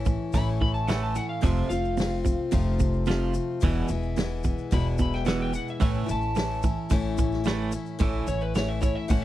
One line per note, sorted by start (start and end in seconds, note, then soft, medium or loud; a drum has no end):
0.00 0.14 A1 medium
0.00 0.34 E3 medium
0.00 0.34 A3 medium
0.00 0.34 C#4 medium
0.00 0.36 E4 medium
0.05 0.31 A2 medium
0.05 0.31 E3 medium
0.05 kick medium
0.05 shaker medium
0.33 1.17 A1 medium
0.33 0.59 A2 medium
0.33 0.89 A2 medium
0.33 0.59 E3 medium
0.33 0.87 E3 medium
0.33 0.88 A3 medium
0.33 0.89 C#4 medium
0.33 0.47 B5 loud
0.33 kick medium
0.33 open hi-hat medium
0.33 shaker medium
0.37 0.90 E4 medium
0.61 0.86 A2 medium
0.61 0.86 E3 medium
0.61 0.74 B5 medium
0.61 kick medium
0.74 0.88 A5 medium
0.74 shaker soft
0.87 1.14 A2 medium
0.87 1.16 E3 medium
0.87 1.15 E3 medium
0.87 1.17 A3 medium
0.87 1.15 A3 medium
0.87 1.15 C#4 medium
0.87 1.01 F#5 medium
0.87 snare loud
0.87 open hi-hat medium
0.87 shaker medium
0.92 1.14 E4 medium
1.03 1.16 A5 medium
1.15 1.40 A2 medium
1.15 1.41 E3 medium
1.15 1.42 A3 soft
1.15 1.43 C#4 soft
1.15 1.43 E4 soft
1.15 1.29 F#5 medium
1.15 shaker medium
1.29 1.43 F5 medium
1.41 1.65 F1 medium
1.41 1.70 F2 medium
1.41 1.69 F2 medium
1.41 1.70 C3 medium
1.41 1.69 C3 loud
1.41 1.70 F3 medium
1.41 1.69 F3 loud
1.41 1.71 A3 medium
1.41 1.70 C4 medium
1.41 1.68 F4 medium
1.41 1.69 E5 medium
1.41 kick loud
1.41 open hi-hat medium
1.41 shaker medium
1.69 2.33 F1 medium
1.69 1.96 F2 medium
1.69 1.96 C3 medium
1.69 1.97 A3 soft
1.69 1.98 C4 medium
1.69 1.98 F4 medium
1.69 2.76 F5 medium
1.69 shaker medium
1.73 1.96 F3 soft
1.85 shaker soft
1.97 2.22 F2 medium
1.97 2.22 C3 medium
1.97 2.51 F3 medium
1.97 2.51 A3 medium
1.97 2.52 C4 medium
1.97 2.52 F4 medium
1.97 snare loud
1.97 open hi-hat medium
1.97 shaker medium
2.25 2.50 F2 medium
2.25 2.50 C3 medium
2.25 kick medium
2.25 shaker medium
2.51 3.37 F1 medium
2.51 3.07 F2 medium
2.51 2.77 F2 medium
2.51 3.07 C3 medium
2.51 2.77 C3 medium
2.51 3.05 F3 medium
2.51 3.06 A3 medium
2.51 3.06 C4 medium
2.51 3.08 F4 medium
2.51 kick medium
2.51 open hi-hat medium
2.51 shaker medium
2.79 3.05 F2 medium
2.79 3.05 C3 medium
2.79 kick medium
2.79 shaker loud
2.94 shaker soft
3.06 3.33 F2 medium
3.06 3.33 C3 medium
3.06 3.61 F3 medium
3.06 3.34 F3 loud
3.06 3.62 A3 medium
3.06 3.62 C4 medium
3.06 3.63 F4 medium
3.06 open hi-hat soft
3.06 shaker medium
3.10 snare loud
3.34 3.60 F2 medium
3.34 3.60 C3 medium
3.34 shaker medium
3.61 3.84 E1 medium
3.61 3.89 E2 medium
3.61 3.88 E2 medium
3.61 3.90 B2 medium
3.61 3.89 B2 loud
3.61 3.90 E3 medium
3.61 3.89 E3 loud
3.61 3.89 G#3 medium
3.61 3.88 B3 medium
3.61 3.87 E4 medium
3.61 kick loud
3.61 open hi-hat medium
3.61 shaker medium
3.88 4.52 E1 medium
3.88 4.15 B2 medium
3.88 4.15 E3 medium
3.88 4.17 G#3 soft
3.88 4.17 B3 medium
3.88 4.16 E4 medium
3.88 shaker medium
4.03 shaker soft
4.16 4.42 E2 medium
4.16 4.42 B2 medium
4.16 4.72 E3 medium
4.16 4.72 G#3 medium
4.16 4.72 B3 medium
4.16 4.73 E4 medium
4.16 snare loud
4.16 open hi-hat soft
4.16 shaker medium
4.44 4.69 E2 medium
4.44 4.69 B2 medium
4.44 kick medium
4.44 shaker medium
4.58 shaker soft
4.71 5.56 E1 medium
4.71 5.26 E2 medium
4.71 4.97 E2 medium
4.71 5.27 B2 medium
4.71 4.97 B2 medium
4.71 5.24 E3 medium
4.71 5.25 G#3 medium
4.71 5.26 B3 medium
4.71 5.27 E4 medium
4.71 4.86 B5 loud
4.71 kick medium
4.71 open hi-hat medium
4.71 shaker medium
4.98 5.24 E2 medium
4.98 5.24 B2 medium
4.98 5.14 B5 medium
4.98 kick medium
4.98 shaker loud
5.13 5.26 G5 medium
5.13 snare soft
5.13 shaker soft
5.25 5.52 E2 medium
5.25 5.53 B2 medium
5.25 5.80 E3 medium
5.25 5.53 E3 loud
5.25 5.80 G#3 medium
5.25 5.81 B3 medium
5.25 5.82 E4 medium
5.25 5.40 F#5 medium
5.25 snare loud
5.25 open hi-hat medium
5.25 shaker medium
5.42 5.54 G5 medium
5.53 5.78 E2 medium
5.53 5.79 B2 medium
5.53 5.68 F#5 medium
5.53 shaker medium
5.68 5.82 E5 medium
5.68 shaker soft
5.80 6.03 A1 medium
5.80 6.08 A2 medium
5.80 6.07 A2 medium
5.80 6.09 E3 medium
5.80 6.07 E3 medium
5.80 6.08 A3 medium
5.80 6.07 A3 medium
5.80 6.08 C#4 medium
5.80 6.05 E4 medium
5.80 6.09 E5 medium
5.80 kick loud
5.80 open hi-hat medium
5.80 shaker medium
6.06 6.72 A1 medium
6.06 6.33 A2 medium
6.06 6.34 E3 medium
6.06 6.35 A3 soft
6.06 6.36 C#4 soft
6.06 6.35 E4 medium
6.06 shaker loud
6.11 7.16 A5 medium
6.22 shaker soft
6.35 6.61 A2 medium
6.35 6.63 E3 medium
6.35 6.61 E3 medium
6.35 6.64 A3 medium
6.35 6.63 C#4 medium
6.35 6.62 E4 medium
6.35 snare loud
6.35 open hi-hat medium
6.35 shaker medium
6.63 6.88 A2 medium
6.63 6.89 E3 medium
6.63 6.90 A3 soft
6.63 6.90 C#4 soft
6.63 6.91 E4 soft
6.63 kick medium
6.63 shaker medium
6.90 7.75 A1 medium
6.90 7.45 A2 medium
6.90 7.16 A2 medium
6.90 7.16 E3 medium
6.90 7.43 E3 medium
6.90 7.45 A3 medium
6.90 7.45 C#4 loud
6.90 7.46 E4 medium
6.90 kick medium
6.90 open hi-hat medium
6.90 shaker medium
7.18 7.43 A2 medium
7.18 7.43 E3 medium
7.18 kick medium
7.18 shaker loud
7.32 snare soft
7.32 shaker soft
7.44 7.72 A2 medium
7.44 7.72 E3 medium
7.44 7.72 E3 loud
7.44 7.73 A3 medium
7.44 7.72 A3 loud
7.44 7.72 C#4 medium
7.44 7.71 E4 medium
7.44 snare loud
7.44 open hi-hat medium
7.44 shaker medium
7.72 7.98 A2 medium
7.72 7.98 E3 medium
7.72 7.99 A3 soft
7.72 7.99 C#4 soft
7.72 7.99 E4 medium
7.72 shaker loud
7.86 shaker soft
7.99 8.22 A1 loud
7.99 8.27 A2 medium
7.99 8.26 A2 medium
7.99 8.27 E3 medium
7.99 8.28 A3 medium
7.99 8.27 A3 loud
7.99 8.27 C#4 medium
7.99 8.26 E4 loud
7.99 kick loud
7.99 open hi-hat medium
7.99 shaker medium
8.27 8.90 A1 medium
8.27 8.53 A2 medium
8.27 8.53 E3 medium
8.27 8.55 A3 soft
8.27 8.56 C#4 soft
8.27 8.55 E4 medium
8.27 8.41 C#5 loud
8.27 shaker loud
8.41 8.55 B4 medium
8.41 shaker soft
8.55 8.80 A2 medium
8.55 8.83 E3 medium
8.55 8.80 E3 medium
8.55 8.82 A3 medium
8.55 8.81 C#4 medium
8.55 8.80 E4 medium
8.55 8.69 C#5 medium
8.55 snare loud
8.55 open hi-hat medium
8.55 shaker medium
8.69 8.82 E5 loud
8.81 9.07 A2 medium
8.81 9.08 E3 medium
8.81 9.09 A3 soft
8.81 9.09 C#4 soft
8.81 9.09 E4 medium
8.81 8.95 C#5 loud
8.81 kick medium
8.81 shaker loud
8.95 9.09 E5 loud
9.08 9.24 A1 medium
9.08 9.24 A2 medium
9.08 9.24 E3 medium
9.08 9.24 A3 medium
9.08 9.24 C#4 medium
9.08 9.24 E4 medium
9.08 9.23 F#5 medium
9.08 kick medium
9.08 open hi-hat medium
9.08 shaker medium